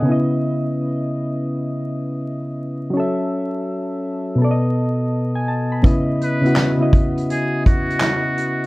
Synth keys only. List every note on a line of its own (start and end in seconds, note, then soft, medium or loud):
0.00 2.89 C#3 medium
0.00 0.10 D#5 medium
0.05 2.91 B3 medium
0.05 2.92 E4 medium
0.12 2.94 D#5 medium
2.90 4.34 F#3 medium
2.90 4.36 C#4 medium
2.97 4.38 A4 medium
2.97 4.39 E5 medium
4.35 5.79 B2 medium
4.35 5.81 B3 medium
4.42 5.82 A4 medium
4.42 4.50 D5 medium
4.51 5.86 D#5 medium
5.35 5.47 G#5 medium
5.48 5.71 A5 medium
5.72 6.06 B5 medium
5.83 6.22 C#3 medium
5.83 6.23 B3 medium
5.83 6.23 E4 medium
5.87 6.24 D#5 medium
6.41 6.65 C#3 medium
6.41 6.66 B3 medium
6.41 6.67 E4 medium
6.47 6.67 F#4 medium
6.77 7.78 C#3 medium
6.77 7.79 B3 medium
6.77 7.80 E4 medium
6.82 7.81 D#5 medium